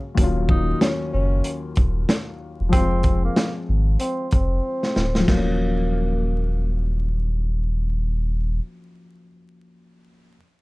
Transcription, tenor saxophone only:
Already playing: C#3
0.50 D#4
0.81 C#4
1.13 C#4
2.72 C4
3.25 A#3
4.00 C4
4.34 C4
5.28 A#3

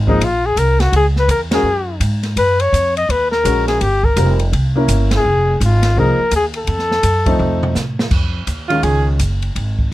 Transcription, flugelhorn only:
0.09 D#4
0.25 F4
0.46 G#4
0.59 A#4
0.81 F#4
0.96 G#4
1.19 B4
1.31 A#4
1.54 G#4
2.39 B4
2.61 C#5
2.97 D#5
3.11 B4
3.31 A#4
3.68 G#4
3.82 G4
4.05 A#4
5.17 G#4
5.65 F4
5.99 A#4
6.36 G#4
6.58 A4

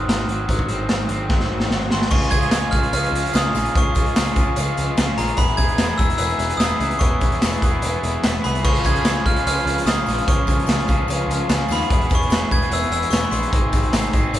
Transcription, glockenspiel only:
Already playing: C6
1.93 C6
2.11 C#6
2.31 G#6
2.71 F6
2.93 F6
3.36 D#6
3.77 C#6
5.18 A#5
5.38 B5
5.57 G#6
5.98 E6
6.18 E6
6.57 D#6
6.99 C#6
8.44 B5
8.65 C#6
8.86 G#6
9.26 F6
9.47 F6
9.87 D#6
10.28 C#6
11.72 B5
12.15 C#6
12.52 G#6
12.73 E6
12.93 E6
13.10 C#6
13.31 C6

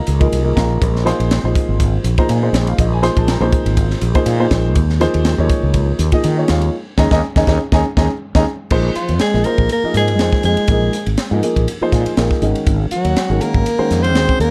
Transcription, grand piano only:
Already playing: A#4 D#5 F5 A#5
0.20 F3 A#3 D#4 G#4 A#4
0.44 F3 A#3 D#4 G#4 A#4
0.56 A#4 D#5 F5 A#5
1.05 F3 A#3 D#4 G#4 C5 F5 G#5 C6
1.44 F3 A#3 D#4 G#4 C5
2.18 F3 A#3 D#4 G#4 C5 A#5
2.30 G#5
2.43 F3 A#3 D#4 G#4 C5
2.68 F5
2.80 D#5
2.93 G#5
3.02 F3 A#3 D#4 G#4 C5 C6
3.18 A5
3.30 A#5
3.40 F3 A#3 D#4 G#4 C5
4.14 F3 A#3 D#4 G#4 C5
4.39 F3 A#3 D#4 G#4 C5
5.00 F3 A#3 D#4 G#4 C5
5.38 F3 A#3 D#4 G#4 C#5
6.12 F3 A#3 D#4 G#4 D#5
6.37 F3 A#3 D#4 G#4 C#5
6.49 F5
6.98 C#4 D#4 G#4 D#5 G#5 A#5
7.12 C#4 D#4 G#4 D#5 G#5 A#5
7.36 C#4 D#4 G#4 D#5 G#5 A#5
7.47 C#4 D#4 G#4 D#5 G#5 A#5
7.72 C#4 D#4 G#4 D#5 G#5 A#5
7.97 C#4 D#4 G#4 D#5 G#5 A#5
8.35 C#4 D#4 G#4 D#5 G#5 A#5
8.71 F3 A#3 D#4 G#4 C5
8.96 G#4 C5
9.34 F3 A#3 D#4 G#4 D#5
9.45 F3 A#3 D#4 G#4 C5
9.71 G#4
9.83 F3 A#3 D#4 G#4 A#4
10.20 F3 A#3 D#4 G#4 C5
10.69 F3 A#3 D#4 G#4 A#4
10.95 G#4 C5
11.32 F3 A#3 D#4 G#4 A#4
11.43 F3 A#3 D#4 G#4 A#4
11.68 G#4 A#4
11.81 F3 A#3 D#4 G#4 C5
11.93 G#5
12.17 F3 A#3 D#4 G#4 A#4 F5
12.42 D#3 G#3 C#4 F#4 A#4 D#5
12.91 F#4 A#4
13.30 D#3 G#3 C#4 F#4 A#4
13.41 D#3 G#3 C#4 F#4 A#4
13.65 F#4 A#4
13.78 D#3 G#3 C#4 F#4 C5
14.14 D#3 G#3 C#4 F#4 G#4

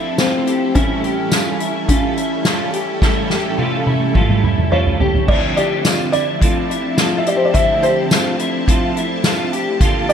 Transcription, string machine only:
Already playing: F3 C4 D4 E4 A4
0.75 G3 A3 C#4 A4
5.29 F3 C4 D4 E4 A5
9.81 D2 F3 A#3 G4

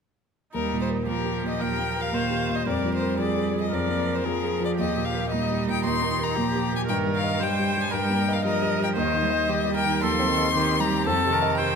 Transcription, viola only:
0.53 D#4
1.07 G4
1.60 A#4
2.14 C5
2.67 A#4
3.19 G#4
3.72 A#4
4.26 G#4
4.78 G4
5.31 D#4
6.36 G4
6.87 A#4
7.40 C5
7.91 A#4
8.44 A#4
8.96 C5
9.49 G4
9.75 A#4
10.02 A4
10.54 G4
10.80 G4
11.07 A4
11.32 A#4
11.58 C5

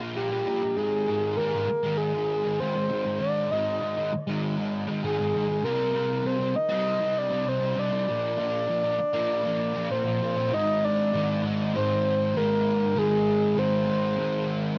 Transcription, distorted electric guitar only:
0.00 F3 A#3
0.15 A#2 F3 A#3
0.31 F3 A#3
0.46 A#2 F3 A#3
0.62 F3 A#3
0.76 G#2 D#3 G#3
1.07 G#2 D#3 G#3
1.37 G#2 D#3 G#3
1.54 D#3 G#3
1.69 muted distorted electric guitar stroke
1.83 D#3 G#3
2.14 D#3 G#3
2.44 D#3 G#3
2.59 G#2 D#3 G#3
2.75 D#3 G#3
2.89 G#2 D#3 G#3
3.04 D#3 G#3
3.20 G#2 D#3 G#3
3.51 G#2 D#3 G#3
3.81 G#2 D#3 G#3
3.96 D#3 G#3
4.13 muted distorted electric guitar stroke
4.27 D#3 G#3
4.57 D#3 G#3
4.88 D#3 G#3
5.03 G#2 D#3 G#3
5.18 D#3 G#3
5.33 G#2 D#3 G#3
5.48 D#3 G#3
5.63 C3 G3 C4
5.93 C3 G3 C4
6.23 C3 G3 C4
6.39 G3 C4
6.54 muted distorted electric guitar stroke
6.68 G3 C4
7.00 G3 C4
7.30 G3 C4
7.45 C3 G3 C4
7.60 G3 C4
7.75 C3 G3 C4
7.91 G3 C4
8.07 A#2 F3 A#3
8.37 A#2 F3 A#3
8.68 A#2 F3 A#3
8.83 F3 A#3
8.99 muted distorted electric guitar stroke
9.13 F3 A#3
9.44 F3 A#3
9.74 F3 A#3
9.90 A#2 F3 A#3
10.05 F3 A#3
10.21 A#2 F3 A#3
10.36 F3 A#3
10.52 G#2 D#3 G#3
11.13 G#2 D#3 G#3
11.43 D#3 G#3
11.73 G#2 D#3 G#3
12.34 G#2 D#3 G#3
12.96 G#2 D#3 G#3
13.55 G#2 D#3 G#3
13.86 D#3 G#3
14.16 G#2 D#3 G#3

